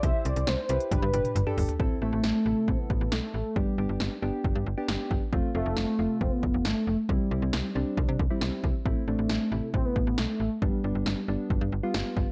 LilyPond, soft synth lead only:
\new Staff \with { instrumentName = "Soft synth lead" } { \time 4/4 \key a \minor \tempo 4 = 136 e''8 d''8 c''4 b'4. r8 | r8 a4. c'16 b8. a8 a8 | g4. r2 r8 | r8 a4. c'16 b8. a8 a8 |
g4. r2 r8 | r8 a4. c'16 b8. a8 a8 | g4. r2 r8 | }